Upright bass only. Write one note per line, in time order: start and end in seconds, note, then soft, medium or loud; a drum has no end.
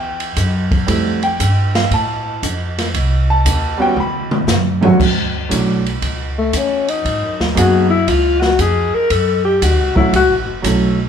0.00 0.35 E2 medium
0.37 0.87 F#2 medium
0.88 1.38 F2 medium
1.40 1.90 G2 medium
1.91 2.41 A2 medium
2.43 2.93 F2 loud
2.94 3.44 C2 medium
3.45 3.95 D#2 loud
3.96 4.46 E2 medium
4.47 4.98 F#2 loud
5.00 5.50 D2 medium
5.51 6.01 B1 medium
6.02 6.52 C#2 medium
6.53 7.03 E2 medium
7.05 7.23 G#2 medium
7.23 7.39 F#2 medium
7.40 7.56 D#2 medium
7.57 8.06 F#2 medium
8.08 8.58 C#2 medium
8.59 8.91 F2 loud
8.94 muted upright bass stroke soft
9.10 9.60 F#2 medium
9.62 9.79 D2 loud
9.79 9.94 C#2 medium
9.95 10.11 A1 medium
10.13 10.29 C#2 medium
10.29 10.45 A1 soft
10.46 10.62 F#1 medium
10.64 11.09 B1 loud